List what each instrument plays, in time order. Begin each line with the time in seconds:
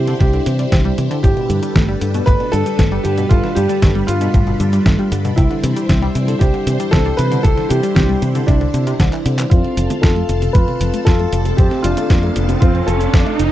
Already playing: fingered electric bass C3, string machine G3 D4 E4 C5, grand piano G4
0.07 synth arpeggio sound D3, closed hi-hat
0.19 fingered electric bass C2, synth arpeggio sound C3, grand piano G4, kick, closed hi-hat
0.33 synth arpeggio sound D3, closed hi-hat
0.46 fingered electric bass C3, synth arpeggio sound E3, closed hi-hat
0.59 synth arpeggio sound G3, closed hi-hat
0.72 fingered electric bass C2, synth arpeggio sound C4, kick, snare, closed hi-hat
0.85 synth arpeggio sound G3, closed hi-hat
0.98 fingered electric bass C3, synth arpeggio sound E3, closed hi-hat
1.11 synth arpeggio sound D3, closed hi-hat
1.23 fingered electric bass G1, synth arpeggio sound A2, grand piano G4, string machine A4 B4, kick, closed hi-hat, cabasa
1.37 synth arpeggio sound B2, closed hi-hat
1.50 fingered electric bass G2, synth arpeggio sound D3, closed hi-hat, cabasa
1.63 synth arpeggio sound G3, closed hi-hat, cabasa
1.75 fingered electric bass G1, synth arpeggio sound A3, kick, snare, closed hi-hat, cabasa
1.88 synth arpeggio sound G3, closed hi-hat
2.01 fingered electric bass G2, synth arpeggio sound D3, closed hi-hat, cabasa
2.14 synth arpeggio sound B2, closed hi-hat, cabasa
2.26 fingered electric bass G1, synth arpeggio sound A2, grand piano B4, kick, closed hi-hat, cabasa
2.40 synth arpeggio sound B2, closed hi-hat
2.52 fingered electric bass G2, synth arpeggio sound D3, grand piano A4, closed hi-hat, cabasa
2.66 synth arpeggio sound G3, closed hi-hat, cabasa
2.79 fingered electric bass G1, synth arpeggio sound A3, kick, snare, closed hi-hat, cabasa
2.92 synth arpeggio sound G3, closed hi-hat
3.04 fingered electric bass G2, synth arpeggio sound D3, grand piano G4, closed hi-hat, cabasa
3.18 synth arpeggio sound B2, closed hi-hat, cabasa
3.29 fingered electric bass G1, synth arpeggio sound A2, grand piano F4, kick, closed hi-hat, cabasa
3.44 synth arpeggio sound B2, snare, closed hi-hat
3.55 fingered electric bass G2, synth arpeggio sound D3, grand piano G4, closed hi-hat, cabasa
3.69 synth arpeggio sound G3, closed hi-hat, cabasa
3.82 fingered electric bass G1, synth arpeggio sound A3, kick, snare, closed hi-hat, cabasa
3.95 synth arpeggio sound G3, closed hi-hat
4.07 fingered electric bass G2, synth arpeggio sound D3, grand piano F4, closed hi-hat, cabasa
4.21 synth arpeggio sound B2, closed hi-hat, cabasa
4.34 fingered electric bass G1, synth arpeggio sound A2, kick, closed hi-hat, cabasa
4.47 synth arpeggio sound B2, closed hi-hat
4.60 fingered electric bass G2, synth arpeggio sound D3, closed hi-hat, cabasa
4.73 synth arpeggio sound G3, closed hi-hat, cabasa
4.86 fingered electric bass G1, synth arpeggio sound A3, kick, snare, closed hi-hat, cabasa
4.99 synth arpeggio sound G3, closed hi-hat
5.12 fingered electric bass G2, synth arpeggio sound D3, closed hi-hat, cabasa
5.25 synth arpeggio sound B2, closed hi-hat, cabasa
5.36 fingered electric bass C2, synth arpeggio sound C3, grand piano E4, string machine E4 C5, kick, closed hi-hat, cabasa
5.51 synth arpeggio sound D3, closed hi-hat
5.63 fingered electric bass C3, synth arpeggio sound E3, closed hi-hat, cabasa
5.76 synth arpeggio sound G3, closed hi-hat, cabasa
5.89 fingered electric bass C2, synth arpeggio sound C4, kick, snare, closed hi-hat, cabasa
6.02 synth arpeggio sound G3, closed hi-hat
6.15 fingered electric bass C3, synth arpeggio sound E3, closed hi-hat, cabasa
6.28 synth arpeggio sound D3, closed hi-hat, cabasa
6.39 fingered electric bass C2, synth arpeggio sound C3, grand piano G4, kick, closed hi-hat, cabasa
6.54 synth arpeggio sound D3, closed hi-hat
6.67 fingered electric bass C3, synth arpeggio sound E3, closed hi-hat, cabasa
6.80 synth arpeggio sound G3, closed hi-hat, cabasa
6.91 fingered electric bass C2, synth arpeggio sound C4, grand piano A4, kick, snare, closed hi-hat, cabasa
7.06 synth arpeggio sound G3, closed hi-hat
7.17 fingered electric bass C3, synth arpeggio sound E3, grand piano B4, closed hi-hat, cabasa
7.31 synth arpeggio sound D3, closed hi-hat, cabasa
7.43 fingered electric bass C2, synth arpeggio sound C3, grand piano A4, kick, closed hi-hat, cabasa
7.57 synth arpeggio sound D3, snare, closed hi-hat
7.69 fingered electric bass C3, synth arpeggio sound E3, grand piano G4, closed hi-hat, cabasa
7.83 synth arpeggio sound G3, closed hi-hat, cabasa
7.95 fingered electric bass C2, synth arpeggio sound C4, grand piano G4, kick, snare, closed hi-hat, cabasa
8.09 synth arpeggio sound G3, closed hi-hat
8.22 fingered electric bass C3, synth arpeggio sound E3, closed hi-hat, cabasa
8.35 synth arpeggio sound D3, closed hi-hat, cabasa
8.47 fingered electric bass C2, synth arpeggio sound C3, grand piano D4, kick, closed hi-hat, cabasa
8.61 synth arpeggio sound D3, closed hi-hat
8.74 fingered electric bass C3, synth arpeggio sound D3, closed hi-hat, cabasa
8.87 synth arpeggio sound C3, closed hi-hat, cabasa
9.00 fingered electric bass C2, synth arpeggio sound D3, kick, snare, closed hi-hat, cabasa
9.13 synth arpeggio sound E3, clap, closed hi-hat
9.26 fingered electric bass C3, synth arpeggio sound D3, closed hi-hat, cabasa
9.38 synth arpeggio sound E3, clap, closed hi-hat, cabasa
9.50 fingered electric bass F2, synth arpeggio sound A2, string machine C4 A4 F5 A5, grand piano C4 F4, kick, closed hi-hat, riser, cabasa
9.64 synth arpeggio sound C3, closed hi-hat
9.77 fingered electric bass F1, synth arpeggio sound F3, closed hi-hat, cabasa
9.90 synth arpeggio sound A3, closed hi-hat, high conga, cabasa
10.02 fingered electric bass F2, synth arpeggio sound C4, grand piano F4 A4, kick, snare, closed hi-hat, cabasa
10.16 synth arpeggio sound A3, closed hi-hat
10.29 fingered electric bass F1, synth arpeggio sound F3, closed hi-hat, high conga, cabasa
10.42 synth arpeggio sound C3, closed hi-hat, cabasa
10.53 fingered electric bass F2, synth arpeggio sound A2, grand piano F4 B4, kick, closed hi-hat, cabasa
10.68 synth arpeggio sound C3, closed hi-hat, high conga
10.81 fingered electric bass F1, synth arpeggio sound F3, closed hi-hat, cabasa
10.94 synth arpeggio sound A3, closed hi-hat, cabasa
11.05 fingered electric bass F2, synth arpeggio sound C4, grand piano F4 A4, kick, snare, closed hi-hat, cabasa
11.20 synth arpeggio sound A3, closed hi-hat
11.33 fingered electric bass F1, synth arpeggio sound F3, closed hi-hat, cabasa
11.45 synth arpeggio sound C3, closed hi-hat, cabasa
11.57 fingered electric bass F2, synth arpeggio sound A2, grand piano C4 G4, kick, closed hi-hat, cabasa
11.71 synth arpeggio sound C3, snare, closed hi-hat
11.82 fingered electric bass F1, synth arpeggio sound F3, grand piano D4 F4, closed hi-hat, cabasa
11.97 synth arpeggio sound A3, closed hi-hat, high conga, cabasa
12.10 fingered electric bass F2, synth arpeggio sound C4, kick, snare, closed hi-hat, cabasa
12.23 synth arpeggio sound A3, closed hi-hat
12.36 fingered electric bass F1, synth arpeggio sound F3, closed hi-hat, high conga, cabasa
12.49 synth arpeggio sound C3, closed hi-hat, cabasa
12.60 fingered electric bass F2, synth arpeggio sound A2, grand piano C4 F4, kick, closed hi-hat, cabasa
12.75 synth arpeggio sound C3, closed hi-hat
12.87 fingered electric bass F1, synth arpeggio sound F3, grand piano F4 A4, closed hi-hat, high conga, cabasa
13.01 synth arpeggio sound A3, closed hi-hat, cabasa
13.14 fingered electric bass F2, synth arpeggio sound C4, kick, snare, closed hi-hat, cabasa
13.26 synth arpeggio sound A3, closed hi-hat
13.39 fingered electric bass F1, synth arpeggio sound F3, closed hi-hat, cabasa